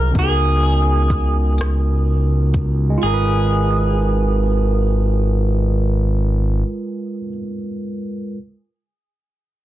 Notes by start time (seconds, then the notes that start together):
Already playing: C2 F4 G#4 A#4
0.11 C#3 B3
0.15 C#2 D#4 G#4, kick, closed hi-hat
0.19 F#4 A4
0.29 A#4
1.10 kick, closed hi-hat
1.58 cross-stick, closed hi-hat
2.54 kick, closed hi-hat
2.90 G#3
2.98 F4
3.03 G#1 G#4 A#4
3.14 B4